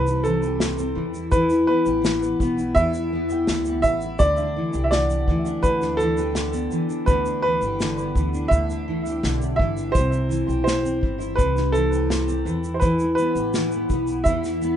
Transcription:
Already playing: upright bass C2, steel-string acoustic guitar C3 E3 C4 G4, upright piano B4
0.07 steel-string acoustic guitar E4, shaker
0.24 steel-string acoustic guitar E3, upright piano A4, shaker
0.43 steel-string acoustic guitar G4, shaker
0.60 steel-string acoustic guitar C3, snare, shaker
0.78 steel-string acoustic guitar C4, shaker
0.95 upright bass E2, steel-string acoustic guitar E3
1.14 steel-string acoustic guitar E4, shaker
1.32 steel-string acoustic guitar E3, upright piano B4, kick, shaker
1.50 steel-string acoustic guitar E4, shaker
1.67 steel-string acoustic guitar B3, upright piano B4
1.85 upright bass A1, steel-string acoustic guitar G4, shaker
2.02 steel-string acoustic guitar E3, snare, shaker
2.23 steel-string acoustic guitar B3, shaker
2.40 upright bass B1, steel-string acoustic guitar B3, kick, shaker
2.57 steel-string acoustic guitar E4, shaker
2.75 upright bass E2, steel-string acoustic guitar E3, upright piano E5, kick, shaker
2.94 steel-string acoustic guitar E4, shaker
3.13 steel-string acoustic guitar B3
3.30 steel-string acoustic guitar G4, shaker
3.47 upright bass D2, steel-string acoustic guitar E3, snare, shaker
3.65 steel-string acoustic guitar B3, shaker
3.82 upright bass A1, steel-string acoustic guitar B3, upright piano E5, kick, shaker
4.01 steel-string acoustic guitar E4, shaker
4.19 upright bass D2, steel-string acoustic guitar D3, upright piano D5, kick, shaker
4.37 steel-string acoustic guitar D4, shaker
4.56 steel-string acoustic guitar E3
4.73 upright bass C2, steel-string acoustic guitar G4, shaker
4.84 upright piano E5
4.91 steel-string acoustic guitar D3, upright piano D5, snare, shaker
5.10 steel-string acoustic guitar B3, shaker
5.28 upright bass D2, steel-string acoustic guitar E3, kick
5.46 steel-string acoustic guitar D4, shaker
5.63 upright bass D2, steel-string acoustic guitar D3, upright piano B4, kick, shaker
5.82 steel-string acoustic guitar D4, snare, shaker
5.97 upright piano A4, shaker
6.01 steel-string acoustic guitar E3
6.17 steel-string acoustic guitar G4, shaker
6.35 steel-string acoustic guitar D3, snare, shaker
6.53 steel-string acoustic guitar B3, shaker
6.71 steel-string acoustic guitar E3, shaker
6.89 steel-string acoustic guitar D4, shaker
7.06 upright bass D2, steel-string acoustic guitar D3, upright piano B4, kick, shaker
7.26 steel-string acoustic guitar D4, shaker
7.42 steel-string acoustic guitar E3, upright piano B4
7.62 upright bass G1, steel-string acoustic guitar G4, shaker
7.80 steel-string acoustic guitar D3, snare, shaker
7.98 steel-string acoustic guitar B3, shaker
8.16 upright bass D2, steel-string acoustic guitar E3, kick, shaker
8.34 steel-string acoustic guitar D4, shaker
8.48 upright bass D2, steel-string acoustic guitar D3, upright piano E5, kick, shaker
8.69 steel-string acoustic guitar D4, shaker
8.88 steel-string acoustic guitar E3
9.06 steel-string acoustic guitar G4, shaker
9.23 upright bass B1, steel-string acoustic guitar D3, snare, shaker
9.41 steel-string acoustic guitar B3, shaker
9.56 upright bass G1, steel-string acoustic guitar E3, upright piano E5, kick
9.77 steel-string acoustic guitar D4, shaker
9.92 upright bass C2, steel-string acoustic guitar C3, upright piano C5, kick, shaker
10.12 steel-string acoustic guitar E4, shaker
10.29 steel-string acoustic guitar E3, shaker
10.47 upright bass B1, steel-string acoustic guitar G4, shaker
10.64 upright piano C5, snare, shaker
10.83 steel-string acoustic guitar C4, shaker
11.01 upright bass G1, steel-string acoustic guitar E3, kick
11.18 steel-string acoustic guitar E4, shaker
11.36 upright bass C2, steel-string acoustic guitar C3, upright piano B4, kick, shaker
11.56 steel-string acoustic guitar E4, snare, shaker
11.72 steel-string acoustic guitar E3, upright piano A4, shaker
11.93 steel-string acoustic guitar G4, shaker
12.10 steel-string acoustic guitar C3, snare, shaker
12.28 steel-string acoustic guitar C4, shaker
12.45 upright bass E2, steel-string acoustic guitar E3, shaker
12.64 steel-string acoustic guitar E4, shaker
12.74 upright piano C5
12.80 steel-string acoustic guitar E3, upright piano B4, kick, shaker
12.99 steel-string acoustic guitar E4, shaker
13.15 upright piano B4, shaker
13.19 steel-string acoustic guitar B3
13.35 upright bass A1, steel-string acoustic guitar G4, shaker
13.54 steel-string acoustic guitar E3, snare, shaker
13.71 steel-string acoustic guitar B3, shaker
13.90 upright bass B1, steel-string acoustic guitar B3, kick, shaker
14.07 steel-string acoustic guitar E4, shaker
14.24 upright bass E2, steel-string acoustic guitar E3, upright piano E5, kick, shaker
14.44 steel-string acoustic guitar E4, snare, shaker
14.62 steel-string acoustic guitar B3, shaker

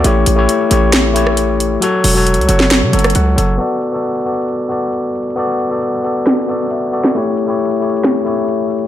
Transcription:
0.04 808-style bass A1, tine electric piano A3 E4 G4 C#5, closed hi-hat
0.26 808-style bass A1, closed hi-hat
0.36 tine electric piano A3 E4 G4 C#5
0.49 closed hi-hat
0.69 808-style bass A1, tine electric piano A3 E4 G4 C#5, closed hi-hat
0.93 snare, closed hi-hat
1.14 tine electric piano A3 E4 G4 C#5, closed hi-hat
1.27 cross-stick
1.37 closed hi-hat
1.60 closed hi-hat
1.80 tine electric piano F#3 F#4 A4 C#5, closed hi-hat
2.04 808-style bass E1, open hi-hat
2.14 tine electric piano F#3 F#4 A4 C#5
2.27 closed hi-hat
2.34 808-style bass C#2, closed hi-hat
2.41 closed hi-hat
2.47 808-style bass F#1, tine electric piano F#3 F#4 A4 C#5, closed hi-hat
2.60 snare
2.71 snare, closed hi-hat
2.82 808-style bass C#3
2.92 808-style bass F#1, tine electric piano F#3 F#4 A4 C#5, closed hi-hat
2.99 closed hi-hat
3.04 cross-stick, closed hi-hat
3.10 closed hi-hat
3.15 808-style bass C#2, tine electric piano F#5, closed hi-hat
3.36 808-style bass F#1, tine electric piano F#3 F#4 A4 C#5, closed hi-hat
3.58 tine electric piano B3 F#4 A4 D5, closed hi-hat
3.82 closed hi-hat
3.92 tine electric piano B3 F#4 A4 D5
4.04 closed hi-hat
4.10 closed hi-hat
4.15 closed hi-hat
4.21 closed hi-hat
4.25 tine electric piano B3 F#4 A4 D5, closed hi-hat
4.34 closed hi-hat
4.41 closed hi-hat
4.48 closed hi-hat
4.69 tine electric piano B3 F#4 A4 D5, closed hi-hat
4.93 closed hi-hat
5.16 closed hi-hat
5.23 closed hi-hat
5.30 closed hi-hat
5.36 tine electric piano B3 F#4 A4 D5, closed hi-hat
5.60 closed hi-hat
5.69 tine electric piano B3 F#4 A4 D5
5.82 closed hi-hat
6.03 tine electric piano B3 F#4 A4 D5, closed hi-hat
6.26 snare, closed hi-hat
6.48 tine electric piano B3 F#4 A4 D5, closed hi-hat
6.71 tine electric piano E5, closed hi-hat
6.92 tine electric piano B3 F#4 A4 D5, closed hi-hat
7.04 snare
7.15 tine electric piano A3 E4 G4 C#5, closed hi-hat
7.37 closed hi-hat
7.47 tine electric piano A3 E4 G4 C#5
7.60 closed hi-hat
7.66 closed hi-hat
7.71 closed hi-hat
7.77 tine electric piano A3, closed hi-hat
7.81 tine electric piano E4 G4 C#5, closed hi-hat
7.90 closed hi-hat
7.97 closed hi-hat
8.04 snare, closed hi-hat
8.25 tine electric piano A3 E4 G4 C#5, closed hi-hat
8.48 closed hi-hat
8.71 closed hi-hat
8.78 closed hi-hat

